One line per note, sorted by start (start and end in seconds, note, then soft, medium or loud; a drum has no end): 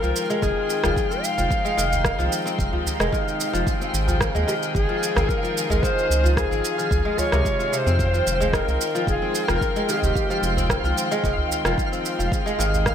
0.00 0.13 C2 medium
0.00 7.95 C3 medium
0.00 12.28 D#3 medium
0.00 0.48 F3 medium
0.00 5.79 G#3 medium
0.00 1.11 C4 medium
0.00 1.48 F4 medium
0.00 0.44 A#4 loud
0.00 12.95 F5 medium
0.00 3.63 G5 medium
0.00 shaker soft
0.16 shaker medium
0.30 0.48 G#3 medium
0.30 shaker soft
0.42 0.53 F1 medium
0.42 1.76 D#3 medium
0.42 1.25 G#4 medium
0.42 kick loud
0.42 shaker soft
0.70 shaker medium
0.83 0.94 F1 medium
0.83 1.36 F3 medium
0.83 cross-stick medium
0.83 udu medium
0.83 shaker soft
0.96 kick loud
0.96 shaker soft
1.11 2.45 C4 medium
1.11 shaker soft
1.23 2.32 F5 medium
1.23 shaker medium
1.38 1.48 F1 medium
1.38 1.83 F3 medium
1.38 udu medium
1.38 shaker soft
1.50 3.65 D#4 medium
1.50 kick loud
1.50 shaker soft
1.65 1.83 G#3 medium
1.65 shaker soft
1.77 2.13 F1 medium
1.77 3.11 D#3 medium
1.77 shaker medium
1.92 udu medium
1.92 shaker soft
2.05 kick loud
2.05 cross-stick medium
2.05 shaker soft
2.19 2.29 C2 medium
2.19 2.72 F3 medium
2.19 shaker soft
2.33 shaker medium
2.46 3.81 C4 medium
2.46 shaker soft
2.59 2.70 F1 medium
2.59 kick loud
2.59 shaker soft
2.73 3.18 F3 medium
2.73 udu medium
2.86 udu loud
2.86 shaker medium
3.00 3.10 F1 loud
3.00 3.18 G#3 medium
3.00 cross-stick medium
3.00 shaker soft
3.12 3.72 D#3 medium
3.12 kick loud
3.12 shaker soft
3.28 shaker soft
3.41 shaker medium
3.53 3.64 F1 medium
3.53 3.72 F3 medium
3.53 shaker soft
3.67 7.95 G#4 medium
3.67 5.81 G5 medium
3.67 kick loud
3.67 shaker soft
3.81 5.15 C4 medium
3.81 shaker soft
3.94 4.29 G#1 medium
3.94 shaker medium
4.07 4.53 F3 medium
4.07 udu loud
4.07 shaker soft
4.21 kick loud
4.21 cross-stick medium
4.21 shaker soft
4.35 4.45 D#2 medium
4.35 4.53 G#3 loud
4.35 shaker soft
4.47 5.82 D#3 medium
4.47 4.54 G4 medium
4.47 shaker medium
4.63 shaker soft
4.74 4.86 G#1 medium
4.74 5.30 G#4 medium
4.74 kick loud
4.74 shaker soft
4.89 5.42 F3 medium
5.03 shaker medium
5.16 5.26 G#1 loud
5.16 6.51 C4 medium
5.16 cross-stick medium
5.16 udu medium
5.16 shaker soft
5.29 5.84 A#4 medium
5.29 kick loud
5.29 shaker soft
5.43 5.88 F3 medium
5.43 shaker soft
5.57 shaker medium
5.70 5.80 G#1 medium
5.70 5.88 G#3 medium
5.70 udu medium
5.70 shaker soft
5.83 7.37 D#3 loud
5.83 12.28 F4 medium
5.83 6.36 C5 loud
5.83 kick loud
5.83 shaker soft
5.99 shaker soft
6.10 6.46 C#2 medium
6.10 shaker medium
6.24 6.77 F3 medium
6.24 udu medium
6.24 shaker soft
6.37 7.20 G#4 medium
6.37 kick loud
6.37 cross-stick medium
6.37 shaker soft
6.51 6.61 G#1 medium
6.51 7.86 C4 medium
6.51 shaker soft
6.65 shaker medium
6.78 7.37 F3 medium
6.78 shaker soft
6.91 7.02 C#2 medium
6.91 kick loud
6.91 shaker soft
7.04 7.44 G#3 medium
7.04 udu medium
7.18 7.59 F4 medium
7.18 7.73 C#5 loud
7.18 udu medium
7.18 shaker medium
7.32 7.42 C#2 loud
7.32 7.71 C3 medium
7.32 cross-stick medium
7.32 shaker soft
7.45 8.04 G#3 medium
7.45 kick loud
7.45 shaker soft
7.59 9.11 F4 medium
7.59 shaker soft
7.72 8.04 C3 medium
7.72 7.79 C#5 loud
7.72 shaker medium
7.78 8.55 C5 loud
7.86 8.21 F2 medium
7.86 9.22 C4 medium
7.86 shaker soft
7.99 12.95 G#3 medium
7.99 12.28 C4 medium
7.99 12.95 G5 medium
7.99 kick loud
7.99 shaker soft
8.13 8.59 F3 medium
8.13 shaker soft
8.26 8.62 F1 medium
8.26 shaker medium
8.40 8.59 G#3 medium
8.40 udu loud
8.40 shaker soft
8.53 9.88 D#3 loud
8.53 9.08 A#4 medium
8.53 kick loud
8.53 cross-stick medium
8.53 shaker soft
8.68 8.77 C2 medium
8.68 shaker soft
8.81 shaker medium
8.95 9.48 F3 loud
8.95 shaker soft
9.07 9.18 F1 medium
9.07 9.46 G#4 medium
9.07 kick loud
9.07 shaker soft
9.22 10.57 C4 medium
9.35 shaker medium
9.48 9.58 F1 medium
9.48 9.94 F3 medium
9.48 9.91 A#4 loud
9.48 cross-stick medium
9.48 udu medium
9.48 shaker soft
9.61 kick loud
9.61 shaker soft
9.76 9.94 G#3 medium
9.76 shaker soft
9.89 11.23 D#3 medium
9.89 9.98 G4 medium
9.89 shaker medium
9.97 10.06 G#4 medium
10.02 10.12 F1 medium
10.02 10.43 G4 medium
10.02 udu medium
10.02 shaker soft
10.15 kick loud
10.15 shaker soft
10.30 10.83 F3 medium
10.30 shaker soft
10.42 10.78 F1 medium
10.42 shaker medium
10.57 11.92 C4 medium
10.57 udu medium
10.57 shaker soft
10.70 kick medium
10.70 cross-stick medium
10.70 shaker soft
10.83 10.93 C2 medium
10.83 11.29 F3 medium
10.83 shaker soft
10.98 shaker medium
11.11 11.29 G#3 loud
11.11 shaker soft
11.24 11.35 F1 medium
11.24 12.37 D#3 medium
11.24 kick medium
11.24 shaker soft
11.37 udu medium
11.50 udu medium
11.50 shaker medium
11.65 11.75 F1 medium
11.65 12.18 F3 loud
11.65 cross-stick medium
11.65 shaker soft
11.78 kick loud
11.78 shaker soft
11.92 12.95 C4 medium
11.92 shaker soft
12.06 shaker medium
12.19 12.29 F1 medium
12.19 12.37 F3 medium
12.19 shaker soft
12.32 12.95 C3 medium
12.32 12.95 D#3 medium
12.32 12.95 G#4 medium
12.32 kick medium
12.32 shaker soft
12.46 12.64 G#3 medium
12.46 shaker soft
12.59 12.95 G#1 medium
12.59 12.95 D#3 medium
12.59 shaker medium
12.74 udu medium
12.74 shaker soft
12.86 kick loud
12.86 cross-stick medium
12.86 shaker soft